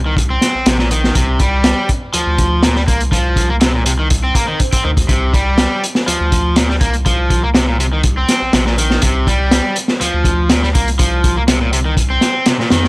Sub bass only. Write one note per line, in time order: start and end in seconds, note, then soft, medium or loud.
0.00 0.39 C2 medium
0.55 0.64 A#1 soft
0.66 1.12 A#1 loud
1.16 1.74 C2 loud
2.14 2.24 D2 soft
2.27 2.89 D2 medium
2.88 4.32 C2 medium
4.85 5.05 D2 medium
5.09 5.67 C2 loud
6.08 6.18 D2 soft
6.21 6.83 D2 medium
6.81 8.25 C2 medium
8.42 8.51 A#1 soft
8.53 8.99 A#1 loud
9.03 9.61 C2 loud
10.01 10.11 D2 soft
10.14 10.77 D2 medium
10.75 12.19 C2 medium
12.71 12.88 F2 medium